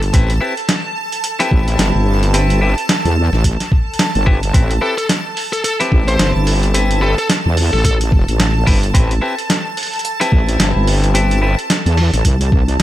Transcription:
Already playing: G1 A5
0.03 closed hi-hat
0.13 A1 C4 E4 G4 B4, kick, closed hi-hat
0.30 closed hi-hat
0.41 C4 E4 G4 B4
0.57 closed hi-hat
0.69 snare, closed hi-hat
1.12 closed hi-hat
1.24 closed hi-hat
1.39 C4 E4 G4 B4, snare, closed hi-hat
1.51 A1, kick
1.68 closed hi-hat
1.79 G1, snare, closed hi-hat
1.95 G1
2.23 closed hi-hat
2.34 C4 E4 G4 B4, closed hi-hat
2.50 closed hi-hat
2.61 C4 E4 G4 B4
2.78 closed hi-hat
2.89 snare, closed hi-hat
3.05 E2, closed hi-hat
3.33 A1, snare
3.44 kick, closed hi-hat
3.60 snare, closed hi-hat
3.72 kick
3.94 closed hi-hat
3.99 snare, closed hi-hat
4.15 G1, closed hi-hat
4.26 C4 E4 G4 B4, kick
4.43 closed hi-hat
4.53 A1 C4 E4 G4 B4, kick, closed hi-hat
4.71 closed hi-hat
4.81 C4 E4 G4 A4 B4
4.98 A4, closed hi-hat
5.09 snare, closed hi-hat
5.37 open hi-hat
5.53 A4, closed hi-hat
5.64 A4, closed hi-hat
5.80 C4 E4 G4 B4, snare, closed hi-hat
5.92 A1, kick
6.08 C5, closed hi-hat
6.19 G1, snare, closed hi-hat
6.36 G1
6.47 open hi-hat
6.63 closed hi-hat
6.74 C4 E4 G4 B4, closed hi-hat
6.91 closed hi-hat
7.01 C4 E4 G4 A4 B4
7.18 A4, closed hi-hat
7.30 snare, closed hi-hat
7.46 E2
7.57 open hi-hat
7.73 A1 A4, snare
7.85 A4, kick, closed hi-hat
8.01 closed hi-hat
8.12 kick
8.28 A1, closed hi-hat
8.40 snare, closed hi-hat
8.67 G1 C4 E4 G4 B4, kick, open hi-hat
8.83 closed hi-hat
8.94 A1 C4 E4 G4 B4, kick, closed hi-hat
9.11 closed hi-hat
9.21 C4 E4 G4 B4
9.39 closed hi-hat
9.50 snare, closed hi-hat
9.77 open hi-hat
9.83 open hi-hat
9.87 open hi-hat
9.94 open hi-hat
9.96 closed hi-hat, open hi-hat
10.01 closed hi-hat, open hi-hat
10.20 C4 E4 G4 B4, snare, closed hi-hat
10.32 A1, kick
10.49 closed hi-hat
10.60 G1, snare, closed hi-hat
10.76 G1
10.87 open hi-hat
11.04 closed hi-hat
11.14 C4 E4 G4 B4, closed hi-hat
11.31 closed hi-hat
11.41 C4 E4 G4 B4
11.59 closed hi-hat
11.70 snare, closed hi-hat
11.86 E2, closed hi-hat
11.97 open hi-hat
12.13 A1, snare, closed hi-hat
12.25 C2, kick, closed hi-hat
12.41 closed hi-hat
12.52 kick
12.68 closed hi-hat

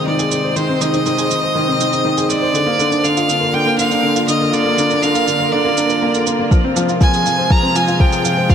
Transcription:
Already playing: C3 D#3 G#3 C4 D#4 G#4 C5
0.06 D#3 D5
0.19 G#4, shaker
0.31 D#3, shaker
0.44 C5
0.56 D#3 C5, shaker
0.69 C4
0.81 D#3 D#5, shaker
0.94 D#4, shaker
1.06 D#3, shaker
1.18 G#4, shaker
1.31 D#3, shaker
1.43 C5
1.55 D#3
1.68 C4
1.80 D#3, shaker
1.92 D#4, shaker
2.05 D#3
2.17 G#4, shaker
2.29 D#3 D5, shaker
2.42 C5
2.54 D3, shaker
2.63 A#3
2.79 D3, shaker
2.91 D4 F4, shaker
3.04 D3 F5, shaker
3.17 F4, shaker
3.29 D3, shaker
3.41 A#4
3.46 A#4
3.53 D3 G5
3.66 A#3
3.78 D3 F5, shaker
3.91 D4, shaker
4.03 D3
4.15 F4, shaker
4.28 D3 D#5, shaker
4.40 A#4
4.53 D3 D5, shaker
4.65 A#3
4.78 D3, shaker
4.90 D4, shaker
5.03 D3 F5, shaker
5.15 F4, shaker
5.28 D3, shaker
5.40 A#4
5.52 D3 D5
5.65 A#3
5.77 D4, shaker
5.90 A#4, shaker
6.02 A#3
6.14 D3, shaker
6.27 A#3, shaker
6.39 A#3
6.51 C3 F3, kick, shaker
6.64 C4
6.73 F3 G#3, shaker
6.89 F4, shaker
6.95 G#4
7.01 F3 G#5, kick, shaker
7.14 G#4, shaker
7.26 F3, shaker
7.38 C5
7.50 F3 A#5, kick
7.63 C4
7.75 F3 G#5, shaker
7.88 F4, shaker
8.00 F3 G5, kick
8.12 G#4, shaker
8.25 F3, shaker
8.37 C5
8.49 F3 F5, kick, shaker

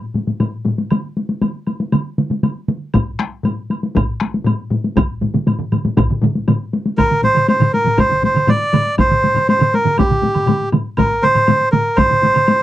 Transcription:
0.14 taiko low-mid, taiko high
0.27 taiko low-mid, taiko high
0.40 taiko low-mid, taiko high, high woodblock
0.65 taiko low-mid, taiko high
0.78 taiko high
0.91 taiko mid, taiko high, high woodblock
1.17 taiko high
1.29 taiko high
1.42 taiko mid, taiko high, high woodblock
1.67 taiko high, high woodblock
1.80 taiko high
1.92 taiko mid, taiko high, high woodblock
2.18 taiko mid, taiko high
2.30 taiko mid, taiko high
2.43 taiko mid, taiko high, high woodblock
2.68 taiko mid, taiko high
2.94 taiko, taiko low-mid, taiko high, high woodblock
3.19 taiko rim, taiko high
3.43 taiko low-mid, taiko high, high woodblock
3.70 taiko high, high woodblock
3.83 taiko high
3.95 taiko, taiko low-mid, taiko high, high woodblock
4.20 taiko rim, taiko high
4.34 taiko high
4.44 taiko low-mid, taiko high, high woodblock
4.71 taiko low-mid, taiko high
4.84 taiko high
4.96 taiko, taiko low-mid, taiko mid, taiko high, high woodblock
5.21 taiko low-mid, taiko mid, taiko high
5.34 taiko low-mid, taiko mid, taiko high
5.47 taiko low-mid, taiko mid, taiko high, high woodblock
5.59 taiko low-mid, taiko mid
5.72 taiko low-mid, taiko mid, taiko high, high woodblock
5.85 taiko low-mid, taiko mid, taiko high
5.97 taiko, taiko low-mid, taiko mid, taiko high, high woodblock
6.10 taiko low-mid, taiko mid
6.22 taiko low-mid, taiko mid, taiko high
6.35 taiko high
6.48 taiko low-mid, taiko mid, taiko high, high woodblock
6.73 taiko high
6.86 taiko high
6.97 A#4, taiko, taiko low-mid, taiko mid, taiko high, high woodblock
7.10 taiko low-mid, taiko mid, taiko high
7.22 C5, taiko low-mid, taiko mid, taiko high
7.35 taiko low-mid, taiko mid, taiko high, high woodblock
7.48 C5, taiko high, high woodblock
7.60 taiko low-mid, taiko mid, taiko high, high woodblock
7.73 A#4, taiko high
7.84 taiko low-mid, taiko mid
7.98 C5, taiko, taiko low-mid, taiko mid, taiko high, high woodblock
8.09 taiko low-mid, taiko mid, taiko high
8.22 C5, taiko low-mid, taiko mid, taiko high
8.35 taiko low-mid, taiko mid, high woodblock
8.47 D5, taiko low-mid, taiko mid, taiko high, high woodblock
8.61 taiko high
8.73 taiko low-mid, taiko mid, taiko high, high woodblock
8.86 taiko high
8.98 C5, taiko, taiko low-mid, taiko mid, taiko high, high woodblock
9.11 taiko low-mid, taiko mid, taiko high
9.23 taiko low-mid, taiko mid, taiko high
9.34 taiko low-mid, taiko mid, taiko high, high woodblock
9.49 C5, taiko high, high woodblock
9.59 taiko low-mid, taiko mid, taiko high, high woodblock
9.74 A#4, taiko high
9.85 taiko low-mid, taiko mid
9.98 G4, taiko, taiko low-mid, taiko mid, taiko high, high woodblock
10.10 taiko low-mid, taiko mid, taiko high
10.22 taiko low-mid, taiko mid, taiko high
10.34 taiko low-mid, taiko mid, taiko high, high woodblock
10.47 taiko low-mid, taiko mid, taiko high, high woodblock
10.62 taiko high
10.72 taiko low-mid, taiko mid, taiko high, high woodblock
10.97 A#4, taiko, taiko low-mid, taiko mid, taiko high, high woodblock
11.11 taiko high
11.22 C5, taiko low-mid, taiko mid, taiko high
11.35 taiko low-mid, taiko mid, taiko high, high woodblock
11.47 taiko low-mid, taiko mid, taiko high, high woodblock
11.61 taiko high
11.72 A#4, taiko low-mid, taiko mid, taiko high
11.96 C5, taiko, taiko low-mid, taiko mid, taiko high, high woodblock
12.10 taiko low-mid, taiko mid, taiko high
12.22 taiko low-mid, taiko mid, taiko high
12.34 taiko low-mid, taiko mid, taiko high, high woodblock
12.47 taiko high, high woodblock

